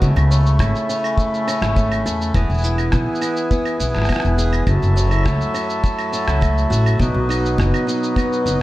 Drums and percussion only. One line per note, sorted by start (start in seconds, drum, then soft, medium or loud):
0.02 kick loud
0.02 cabasa soft
0.17 cabasa soft
0.17 claves medium
0.32 cabasa medium
0.46 cabasa soft
0.59 kick loud
0.59 cross-stick medium
0.59 cabasa soft
0.59 claves medium
0.75 cabasa soft
0.90 cabasa medium
1.04 cabasa soft
1.04 claves medium
1.18 kick medium
1.18 cabasa soft
1.34 cabasa soft
1.48 cabasa medium
1.48 claves medium
1.62 cross-stick medium
1.62 cabasa soft
1.77 kick medium
1.77 cabasa soft
1.92 cabasa soft
1.92 claves medium
2.07 cabasa medium
2.21 cabasa soft
2.34 kick loud
2.34 cabasa soft
2.34 claves medium
2.50 cabasa soft
2.54 cabasa soft
2.58 cabasa soft
2.61 cabasa soft
2.64 cabasa medium
2.78 cabasa soft
2.78 claves medium
2.92 kick loud
2.92 cross-stick medium
2.92 cabasa soft
3.15 cabasa soft
3.22 cabasa medium
3.22 claves medium
3.36 cabasa soft
3.51 kick loud
3.51 cabasa soft
3.65 cabasa soft
3.65 claves medium
3.80 cabasa medium
3.95 cross-stick soft
3.95 cabasa soft
3.98 cross-stick soft
4.02 cross-stick soft
4.02 cabasa soft
4.05 cross-stick soft
4.09 kick medium
4.09 cross-stick medium
4.09 cabasa soft
4.09 claves medium
4.12 cross-stick medium
4.12 cabasa soft
4.16 cross-stick medium
4.20 cross-stick medium
4.24 cabasa soft
4.39 cabasa medium
4.53 cabasa soft
4.53 claves medium
4.67 kick loud
4.67 cabasa soft
4.67 claves medium
4.82 cabasa soft
4.97 cabasa medium
5.11 cabasa soft
5.11 claves medium
5.14 claves soft
5.16 claves soft
5.18 claves soft
5.21 claves soft
5.23 kick medium
5.23 cross-stick medium
5.23 cabasa soft
5.23 claves soft
5.41 cabasa soft
5.55 cabasa medium
5.55 claves medium
5.70 cabasa soft
5.84 kick loud
5.84 cabasa soft
5.99 cabasa soft
5.99 claves medium
6.13 cabasa medium
6.28 cross-stick medium
6.28 cabasa soft
6.42 kick loud
6.42 cabasa soft
6.42 claves medium
6.58 cabasa soft
6.72 cabasa medium
6.86 cabasa soft
6.86 claves medium
7.00 kick medium
7.00 cabasa soft
7.30 cabasa medium
7.30 claves medium
7.45 cabasa soft
7.58 kick medium
7.58 cross-stick medium
7.58 cabasa soft
7.74 cabasa soft
7.74 claves medium
7.89 cabasa medium
8.03 cabasa soft
8.16 kick medium
8.16 cabasa soft
8.16 claves medium
8.33 cabasa soft
8.47 cabasa medium